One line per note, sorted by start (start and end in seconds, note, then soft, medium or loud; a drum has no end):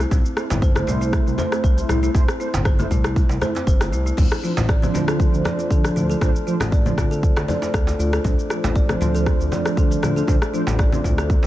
0.00 shaker soft
0.11 0.22 C2 loud
0.11 0.20 A3 medium
0.11 0.24 C4 medium
0.11 0.20 E4 medium
0.11 0.20 C5 medium
0.11 kick loud
0.11 muted conga medium
0.11 djembe tone medium
0.11 low conga medium
0.11 shaker medium
0.26 shaker soft
0.37 0.45 A3 medium
0.37 0.49 E4 medium
0.37 0.45 E4 medium
0.37 0.45 C5 medium
0.37 cross-stick medium
0.37 shaker medium
0.50 0.83 G1 loud
0.50 djembe slap medium
0.50 muted conga soft
0.50 high conga medium
0.50 low conga medium
0.50 shaker medium
0.62 0.75 C5 medium
0.62 kick loud
0.62 shaker soft
0.75 2.00 A3 medium
0.75 0.86 A3 medium
0.75 2.00 E4 medium
0.75 2.00 C5 loud
0.75 cross-stick medium
0.75 high conga loud
0.75 shaker soft
0.87 1.21 C2 medium
0.87 1.00 E4 medium
0.87 muted conga medium
0.87 low conga loud
0.87 shaker medium
1.01 1.08 E4 medium
1.01 shaker soft
1.13 kick loud
1.13 cross-stick medium
1.13 shaker soft
1.27 1.36 C2 medium
1.27 shaker soft
1.38 1.51 C5 medium
1.38 muted conga soft
1.38 djembe slap medium
1.38 high conga loud
1.38 djembe tone medium
1.38 shaker soft
1.52 1.63 C4 medium
1.52 cross-stick medium
1.52 shaker soft
1.64 1.83 C2 medium
1.64 1.77 C5 medium
1.64 kick loud
1.64 shaker medium
1.78 muted conga medium
1.78 shaker medium
1.89 2.09 C2 medium
1.89 2.02 E4 medium
1.89 cross-stick medium
1.89 low conga medium
1.89 shaker medium
2.03 2.10 A3 medium
2.03 2.10 E4 medium
2.03 2.09 E4 medium
2.03 2.10 C5 medium
2.03 shaker soft
2.14 2.25 C2 loud
2.14 2.23 A3 loud
2.14 2.27 C4 medium
2.14 2.23 E4 medium
2.14 2.23 C5 loud
2.14 kick loud
2.14 muted conga medium
2.14 djembe tone medium
2.14 low conga medium
2.14 shaker medium
2.28 cross-stick medium
2.28 shaker soft
2.40 2.49 A3 medium
2.40 2.52 E4 medium
2.40 2.49 E4 medium
2.40 2.48 C5 loud
2.40 shaker medium
2.54 2.86 G1 loud
2.54 djembe slap loud
2.54 muted conga soft
2.54 high conga medium
2.54 low conga medium
2.54 shaker medium
2.65 2.78 C5 medium
2.65 kick loud
2.65 cross-stick medium
2.65 shaker soft
2.79 2.90 A3 medium
2.79 2.86 A3 medium
2.79 2.86 E4 medium
2.79 2.86 C5 loud
2.79 high conga loud
2.79 shaker soft
2.91 3.25 C2 medium
2.91 3.03 E4 medium
2.91 kick medium
2.91 muted conga medium
2.91 low conga medium
2.91 shaker medium
3.04 3.11 E4 medium
3.04 cross-stick medium
3.04 shaker soft
3.16 kick loud
3.16 djembe tone medium
3.16 shaker soft
3.29 3.39 C2 medium
3.29 djembe slap medium
3.29 shaker soft
3.41 3.50 A3 medium
3.41 3.50 E4 medium
3.41 3.55 C5 medium
3.41 3.50 C5 medium
3.41 cross-stick medium
3.41 muted conga soft
3.41 high conga loud
3.41 djembe tone medium
3.41 shaker medium
3.55 3.66 C4 medium
3.55 djembe slap medium
3.55 shaker soft
3.67 3.94 G1 loud
3.67 3.80 C5 medium
3.67 kick loud
3.67 shaker medium
3.81 cross-stick medium
3.81 muted conga medium
3.81 djembe slap medium
3.81 djembe tone medium
3.81 high conga medium
3.81 shaker medium
3.92 4.12 C2 medium
3.92 4.05 E4 medium
3.92 shaker medium
4.06 4.13 E4 medium
4.06 shaker soft
4.17 4.28 D2 loud
4.17 4.26 F3 medium
4.17 11.47 A3 medium
4.17 4.30 D4 medium
4.17 4.26 D4 medium
4.17 11.47 D4 medium
4.17 11.47 F4 medium
4.17 11.47 C5 medium
4.17 4.26 C5 medium
4.17 kick loud
4.17 crash medium
4.17 muted conga soft
4.17 djembe tone medium
4.17 low conga medium
4.17 shaker medium
4.32 cross-stick medium
4.32 shaker soft
4.43 4.52 F3 medium
4.43 4.52 D4 medium
4.43 4.56 F4 medium
4.43 4.52 C5 medium
4.43 shaker medium
4.57 4.90 A1 loud
4.57 djembe slap loud
4.57 muted conga soft
4.57 high conga medium
4.57 low conga medium
4.57 shaker medium
4.69 4.82 D5 medium
4.69 kick loud
4.69 cross-stick medium
4.69 shaker medium
4.82 6.06 F3 medium
4.82 4.93 C4 medium
4.82 6.06 D4 medium
4.82 6.06 C5 medium
4.82 high conga loud
4.82 shaker medium
4.94 5.28 D2 medium
4.94 5.07 F4 medium
4.94 muted conga medium
4.94 low conga loud
4.94 shaker medium
5.08 5.14 A4 medium
5.08 cross-stick loud
5.08 shaker medium
5.20 kick loud
5.20 shaker medium
5.33 5.42 D2 medium
5.33 shaker medium
5.45 5.58 D5 medium
5.45 cross-stick medium
5.45 muted conga soft
5.45 djembe slap medium
5.45 djembe tone medium
5.45 high conga medium
5.45 shaker soft
5.59 5.69 D4 medium
5.59 shaker medium
5.71 5.90 D2 medium
5.71 5.78 A4 medium
5.71 kick loud
5.71 shaker medium
5.85 cross-stick medium
5.85 muted conga soft
5.85 shaker medium
5.96 6.15 D2 medium
5.96 6.08 F4 medium
5.96 low conga medium
5.96 shaker medium
6.10 6.17 F3 medium
6.10 6.17 D4 medium
6.10 6.16 A4 medium
6.10 6.17 C5 medium
6.10 shaker medium
6.21 6.32 D2 loud
6.21 6.30 F3 medium
6.21 6.30 D4 medium
6.21 6.34 D4 medium
6.21 6.30 C5 loud
6.21 kick loud
6.21 cross-stick medium
6.21 muted conga soft
6.21 djembe tone medium
6.21 low conga medium
6.21 shaker medium
6.36 shaker medium
6.47 6.55 F3 medium
6.47 6.55 D4 medium
6.47 6.59 F4 medium
6.47 6.55 C5 loud
6.47 shaker medium
6.60 6.93 A1 loud
6.60 cross-stick medium
6.60 djembe slap loud
6.60 muted conga soft
6.60 high conga medium
6.60 low conga medium
6.60 shaker medium
6.72 6.85 D5 medium
6.72 kick loud
6.72 shaker medium
6.86 6.93 F3 medium
6.86 6.96 C4 medium
6.86 6.93 D4 medium
6.86 6.93 C5 loud
6.86 high conga loud
6.86 shaker medium
6.98 7.31 D2 medium
6.98 7.10 F4 medium
6.98 kick medium
6.98 cross-stick medium
6.98 muted conga soft
6.98 low conga loud
6.98 shaker medium
7.11 7.18 A4 medium
7.11 shaker medium
7.23 kick loud
7.23 shaker medium
7.36 7.46 D2 medium
7.36 cross-stick loud
7.36 djembe slap medium
7.36 shaker medium
7.48 7.57 F3 medium
7.48 7.57 D4 medium
7.48 7.57 C5 medium
7.48 7.61 D5 medium
7.48 muted conga soft
7.48 high conga loud
7.48 djembe tone medium
7.48 shaker medium
7.62 7.73 D4 medium
7.62 djembe slap medium
7.62 shaker medium
7.74 7.93 D2 medium
7.74 7.81 A4 medium
7.74 kick loud
7.74 cross-stick medium
7.74 shaker loud
7.87 djembe slap medium
7.87 muted conga soft
7.87 djembe tone medium
7.87 shaker medium
7.99 8.19 D2 medium
7.99 8.12 F4 medium
7.99 shaker medium
8.13 8.19 A4 medium
8.13 cross-stick medium
8.13 shaker medium
8.24 8.35 D2 loud
8.24 8.33 F3 medium
8.24 8.33 D4 medium
8.24 8.37 D4 medium
8.24 8.33 C5 medium
8.24 kick loud
8.24 muted conga medium
8.24 djembe tone medium
8.24 low conga loud
8.24 shaker loud
8.39 shaker medium
8.50 8.59 F3 medium
8.50 8.59 D4 medium
8.50 8.62 F4 medium
8.50 8.59 C5 medium
8.50 cross-stick medium
8.50 shaker medium
8.64 8.96 A1 loud
8.64 djembe slap loud
8.64 muted conga soft
8.64 high conga medium
8.64 low conga medium
8.64 shaker medium
8.76 8.89 D5 medium
8.76 kick loud
8.76 shaker medium
8.89 10.13 F3 medium
8.89 9.00 C4 medium
8.89 10.13 D4 medium
8.89 10.13 C5 loud
8.89 cross-stick medium
8.89 high conga loud
8.89 shaker medium
9.01 9.35 D2 medium
9.01 9.13 F4 medium
9.01 muted conga medium
9.01 low conga loud
9.01 shaker medium
9.15 9.21 A4 medium
9.15 shaker medium
9.26 kick loud
9.26 cross-stick medium
9.26 shaker medium
9.40 9.49 D2 medium
9.40 shaker medium
9.52 9.65 D5 medium
9.52 djembe slap medium
9.52 muted conga soft
9.52 djembe tone medium
9.52 high conga loud
9.52 shaker medium
9.65 9.76 D4 medium
9.65 cross-stick medium
9.65 shaker medium
9.77 9.97 D2 medium
9.77 9.85 A4 medium
9.77 kick loud
9.77 shaker medium
9.91 muted conga soft
9.91 shaker loud
10.03 10.22 D2 medium
10.03 10.15 F4 medium
10.03 cross-stick medium
10.03 low conga loud
10.03 shaker medium
10.16 10.24 F3 medium
10.16 10.24 D4 medium
10.16 10.23 A4 medium
10.16 10.24 C5 medium
10.16 shaker medium
10.28 10.38 D2 loud
10.28 10.37 F3 loud
10.28 10.37 D4 medium
10.28 10.40 D4 medium
10.28 10.37 C5 loud
10.28 kick loud
10.28 muted conga soft
10.28 djembe tone medium
10.28 low conga medium
10.28 shaker medium
10.42 cross-stick medium
10.42 shaker medium
10.54 10.62 F3 medium
10.54 10.62 D4 medium
10.54 10.66 F4 medium
10.54 10.62 C5 loud
10.54 shaker medium
10.67 11.00 A1 loud
10.67 djembe slap loud
10.67 muted conga soft
10.67 high conga medium
10.67 low conga medium
10.67 shaker medium
10.79 10.92 D5 medium
10.79 kick loud
10.79 cross-stick medium
10.79 shaker medium
10.92 11.00 F3 medium
10.92 11.03 C4 medium
10.92 11.00 D4 medium
10.92 11.00 C5 loud
10.92 high conga loud
10.92 shaker medium
11.04 11.38 D2 medium
11.04 11.17 F4 medium
11.04 kick medium
11.04 muted conga medium
11.04 low conga loud
11.04 shaker medium
11.18 11.24 A4 medium
11.18 cross-stick medium
11.18 shaker medium
11.30 kick loud
11.30 shaker medium
11.43 11.47 D2 medium
11.43 djembe slap medium